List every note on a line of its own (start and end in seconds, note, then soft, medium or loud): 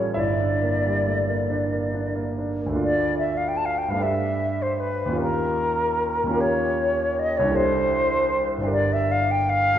0.00 0.11 A1 soft
0.00 0.17 G3 soft
0.00 0.19 A3 soft
0.00 0.18 B3 soft
0.00 0.19 C#4 soft
0.00 0.18 F4 soft
0.00 0.13 A4 soft
0.00 0.16 C#5 soft
0.00 0.16 A5 medium
0.14 2.80 G1 soft
0.14 2.37 E4 soft
0.14 2.15 D5 soft
0.14 2.40 E5 soft
0.40 0.76 D4 soft
0.62 0.98 A#3 soft
0.86 1.21 G3 soft
1.07 1.29 A3 soft
1.28 1.64 A#3 soft
1.50 1.86 D4 soft
1.72 2.09 A#3 soft
1.94 2.31 D4 soft
2.15 2.53 A#3 soft
2.38 2.70 D4 soft
2.61 2.83 A#3 soft
2.66 3.91 D2 soft
2.66 3.90 A3 soft
2.72 3.93 D4 soft
2.72 3.96 F4 soft
2.78 3.97 D5 soft
2.84 3.18 D5 medium
3.18 3.39 E5 soft
3.37 3.50 F5 soft
3.48 3.58 G5 soft
3.57 3.67 A5 soft
3.65 3.80 F5 soft
3.78 3.92 G5 soft
3.88 5.10 G2 soft
3.88 5.12 A3 soft
3.88 4.03 F5 soft
3.95 5.14 D4 soft
3.95 5.13 G4 soft
4.00 5.16 B4 soft
4.00 4.63 E5 medium
4.62 4.81 C5 soft
4.80 5.20 B4 soft
5.06 6.22 D#2 soft
5.06 6.25 C#4 soft
5.12 6.28 F4 soft
5.12 6.32 G4 soft
5.18 6.34 A#4 soft
5.18 6.42 A#4 medium
6.23 7.44 D#2 soft
6.23 7.46 C#4 soft
6.30 7.48 F4 soft
6.34 7.47 G4 soft
6.34 7.51 A#4 soft
6.40 7.20 C#5 medium
7.19 7.39 D#5 medium
7.37 8.60 C2 soft
7.37 7.57 C#5 medium
7.42 8.59 D4 soft
7.42 8.63 E4 soft
7.49 8.62 G4 soft
7.49 8.66 A4 soft
7.56 8.48 C5 medium
8.58 9.77 G1 soft
8.58 9.76 D4 soft
8.63 9.79 G4 soft
8.63 9.79 A#4 soft
8.72 8.94 D5 medium
8.93 9.13 E5 medium
9.11 9.33 F5 medium
9.31 9.51 G5 medium
9.49 9.79 F5 medium
9.74 9.79 A#1 soft